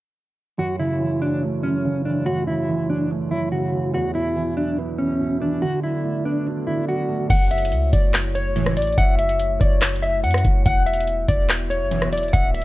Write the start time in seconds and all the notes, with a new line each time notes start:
0.58 F#2 A3 E4 F#4 C#5
0.79 C#3 E4
1.00 E3
1.21 F#3 D4
1.43 A3
1.63 F#2 C#4
1.85 C#3
2.06 E3 D4
2.26 F#2 F#4
2.47 C#3 E4
2.68 E3
2.89 F#3 D4
3.10 A3
3.31 F#2 E4
3.52 C#3 F#4
3.73 E3
3.94 E2 B3 F#4 E5
4.15 B2 E4
4.36 E3
4.57 F#3 D4
4.79 B3
4.99 E2 C#4
5.20 B2
5.42 E3 D4
5.62 D3 F#4 A4 D5
5.83 F#3 E4
6.04 A3
6.25 B3 D4
6.46 D4
6.67 D3 E4
6.88 F#3 F#4
7.09 A3
7.30 F#1 A3 E4 F#4 C#5 F#5, kick, closed hi-hat, crash
7.51 E5, closed hi-hat
7.58 closed hi-hat
7.65 closed hi-hat
7.72 C#2, closed hi-hat
7.93 F#1 D5, kick, closed hi-hat
8.14 cross-stick, clap, closed hi-hat
8.35 C#5, closed hi-hat
8.56 C#2 A2 E3, closed hi-hat
8.66 cross-stick
8.77 A1 D5, closed hi-hat
8.82 closed hi-hat
8.87 closed hi-hat
8.92 closed hi-hat
8.98 F#1 E5 F#5, kick, closed hi-hat
9.19 E5, closed hi-hat, open hi-hat
9.29 closed hi-hat
9.40 closed hi-hat
9.61 F#1 C#5 D5, kick, closed hi-hat
9.82 cross-stick, clap, closed hi-hat
9.89 closed hi-hat
9.96 closed hi-hat
10.02 E5, closed hi-hat
10.24 F#2 F#5, closed hi-hat
10.31 cross-stick, closed hi-hat
10.38 closed hi-hat
10.44 F#1, kick, closed hi-hat
10.66 E1 B3 E5 F#5, kick, closed hi-hat
10.86 E5, closed hi-hat
10.94 closed hi-hat
11.01 closed hi-hat
11.07 closed hi-hat
11.29 E1 D5, kick, closed hi-hat
11.49 cross-stick, clap, closed hi-hat
11.70 C#5, closed hi-hat
11.81 F#1
11.91 B1 F#2 E3, closed hi-hat
12.02 cross-stick
12.07 E1
12.12 D5, closed hi-hat
12.18 closed hi-hat
12.23 closed hi-hat
12.28 closed hi-hat
12.33 D1 A3 D4 B4 E5 F#5, kick, closed hi-hat
12.54 E5, closed hi-hat, open hi-hat
12.61 closed hi-hat